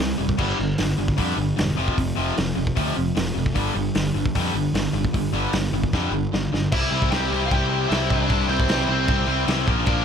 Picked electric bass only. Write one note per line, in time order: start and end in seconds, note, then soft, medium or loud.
0.00 0.12 C2 medium
0.19 0.33 F1 medium
0.39 0.52 G1 medium
0.60 0.73 G1 medium
0.80 0.93 G1 medium
0.98 1.12 G1 medium
1.18 1.32 F2 medium
1.37 1.51 G1 medium
1.59 1.72 E1 medium
1.77 1.91 F1 medium
1.98 2.11 F1 medium
2.18 2.31 F1 medium
2.39 2.52 F1 medium
2.57 2.71 F1 medium
2.77 2.91 D2 loud
2.97 3.10 F1 medium
3.17 3.30 F1 loud
3.36 3.56 F1 medium
3.56 3.69 G1 medium
3.76 3.89 G1 medium
3.96 4.09 G1 medium
4.15 4.29 G1 medium
4.36 4.49 F2 loud
4.54 4.68 G1 medium
4.74 4.87 G1 medium
4.93 5.07 G1 medium
5.14 5.28 G1 medium
5.33 5.47 G1 medium
5.53 5.67 G1 medium
5.72 5.86 G1 medium
5.93 6.07 F2 medium
6.11 6.25 G1 medium
6.33 6.47 G1 medium
6.53 6.66 G1 medium
6.72 6.90 C2 loud
6.91 7.09 C2 medium
7.12 7.30 C2 loud
7.32 7.49 C2 medium
7.51 7.86 C2 loud
7.90 8.08 C2 medium
8.10 8.28 C2 medium
8.30 8.47 C2 medium
8.48 8.66 C2 loud
8.68 8.86 C2 loud
8.88 9.06 C2 medium
9.09 9.26 C2 loud
9.27 9.45 C2 medium
9.48 9.67 C2 medium
9.67 9.85 A#1 medium
9.87 10.05 A#1 medium